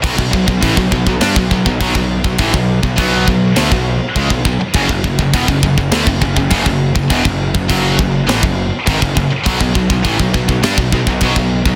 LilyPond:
<<
  \new Staff \with { instrumentName = "Distorted electric guitar" } { \clef bass \time 4/4 \key b \minor \tempo 4 = 102 <b, fis>16 <b, fis>16 <b, fis>16 <b, fis>16 <a, e>16 <b, fis>16 <b, fis>16 <b, fis>16 <g d'>16 <b, fis>16 <b, fis>16 <b, fis>16 <b, fis>16 <b, fis>8 <b, fis>16 | <a, e>16 <b, fis>8 <b, fis>16 <b, fis b>8 <b, fis>8 <d a>16 <b, fis>8 r16 <cis gis>16 <b, fis>16 <b, fis>16 r16 | <fis, cis>16 <fis, cis>16 <fis, cis>16 <fis, cis>16 <e, b,>16 <fis, cis>16 <fis, cis>16 <fis, cis>16 <d a>16 <fis, cis>16 <fis, cis>16 <fis, cis>16 <fis, cis>16 <fis, cis>8 <fis, cis>16 | <e, b,>16 <fis, cis>8 <fis, cis>16 <fis, cis fis>8 <fis, cis>8 <a, e>16 <fis, cis>8 r16 <gis, dis>16 <fis, cis>16 <fis, cis>16 r16 |
<b, fis>16 <b, fis>16 <b, fis>16 <b, fis>16 <a, e>16 <b, fis>16 <b, fis>16 <b, fis>16 <g d'>16 <b, fis>16 <b, fis>16 <b, fis>16 <b, fis>16 <b, fis>8 <b, fis>16 | }
  \new Staff \with { instrumentName = "Distorted electric guitar" } { \clef bass \time 4/4 \key b \minor <b, fis>16 <b, fis>16 <b, fis>16 <b, fis>16 <a, e>16 <b, fis>16 <b, fis>16 <b, fis>16 <g d'>16 <b, fis>16 <b, fis>16 <b, fis>16 <b, fis>16 <b, fis>8 <b, fis>16 | <a, e>16 <b, fis>8 <b, fis>16 <b, fis b>8 <b, fis>8 <d a>16 <b, fis>8 r16 <cis gis>16 <b, fis>16 <b, fis>16 r16 | <fis, cis>16 <fis, cis>16 <fis, cis>16 <fis, cis>16 <e, b,>16 <fis, cis>16 <fis, cis>16 <fis, cis>16 <d a>16 <fis, cis>16 <fis, cis>16 <fis, cis>16 <fis, cis>16 <fis, cis>8 <fis, cis>16 | <e, b,>16 <fis, cis>8 <fis, cis>16 <fis, cis fis>8 <fis, cis>8 <a, e>16 <fis, cis>8 r16 <gis, dis>16 <fis, cis>16 <fis, cis>16 r16 |
<b, fis>16 <b, fis>16 <b, fis>16 <b, fis>16 <a, e>16 <b, fis>16 <b, fis>16 <b, fis>16 <g d'>16 <b, fis>16 <b, fis>16 <b, fis>16 <b, fis>16 <b, fis>8 <b, fis>16 | }
  \new Staff \with { instrumentName = "Distorted electric guitar" } { \clef bass \time 4/4 \key b \minor <b, fis>16 <b, fis>16 <b, fis>16 <b, fis>16 <a, e>16 <b, fis>16 <b, fis>16 <b, fis>16 <g d'>16 <b, fis>16 <b, fis>16 <b, fis>16 <b, fis>16 <b, fis>8 <b, fis>16 | <a, e>16 <b, fis>8 <b, fis>16 <b, fis b>8 <b, fis>8 <d a>16 <b, fis>8 r16 <cis gis>16 <b, fis>16 <b, fis>16 r16 | <fis, cis>16 <fis, cis>16 <fis, cis>16 <fis, cis>16 <e, b,>16 <fis, cis>16 <fis, cis>16 <fis, cis>16 <d a>16 <fis, cis>16 <fis, cis>16 <fis, cis>16 <fis, cis>16 <fis, cis>8 <fis, cis>16 | <e, b,>16 <fis, cis>8 <fis, cis>16 <fis, cis fis>8 <fis, cis>8 <a, e>16 <fis, cis>8 r16 <gis, dis>16 <fis, cis>16 <fis, cis>16 r16 |
<b, fis>16 <b, fis>16 <b, fis>16 <b, fis>16 <a, e>16 <b, fis>16 <b, fis>16 <b, fis>16 <g d'>16 <b, fis>16 <b, fis>16 <b, fis>16 <b, fis>16 <b, fis>8 <b, fis>16 | }
  \new Staff \with { instrumentName = "Picked electric bass" } { \clef bass \time 4/4 \key b \minor b,,16 b,,16 b,,16 b,,16 a,,16 b,,16 b,,16 b,,16 g,16 b,,16 b,,16 b,,16 b,,16 b,,8 b,,16 | a,,16 b,,8 b,,16 b,,8 b,,8 d,16 b,,8 r16 cis,16 b,,16 b,,16 r16 | fis,,16 fis,,16 fis,,16 fis,,16 e,,16 fis,,16 fis,,16 fis,,16 d,16 fis,,16 fis,,16 fis,,16 fis,,16 fis,,8 fis,,16 | e,,16 fis,,8 fis,,16 fis,,8 fis,,8 a,,16 fis,,8 r16 gis,,16 fis,,16 fis,,16 r16 |
b,,16 b,,16 b,,16 b,,16 a,,16 b,,16 b,,16 b,,16 g,16 b,,16 b,,16 b,,16 b,,16 b,,8 b,,16 | }
  \new DrumStaff \with { instrumentName = "Drums" } \drummode { \time 4/4 <cymc bd>16 bd16 bd16 bd16 <cymc bd>16 bd16 bd16 bd16 <cymc sn>16 bd16 bd16 bd16 <cymc bd>16 bd8 bd16 | <cymc bd>16 bd8 bd16 <cymc bd>8 bd8 <cymc sn>16 bd8. <cymc bd>16 bd16 bd8 | <cymc bd>16 bd16 bd16 bd16 <cymc bd>16 bd16 bd16 bd16 <cymc sn>16 bd16 bd16 bd16 <cymc bd>16 bd8 bd16 | <cymc bd>16 bd8 bd16 <cymc bd>8 bd8 <cymc sn>16 bd8. <cymc bd>16 bd16 bd8 |
<cymc bd>16 bd16 bd16 bd16 <cymc bd>16 bd16 bd16 bd16 <cymc sn>16 bd16 bd16 bd16 <cymc bd>16 bd8 bd16 | }
>>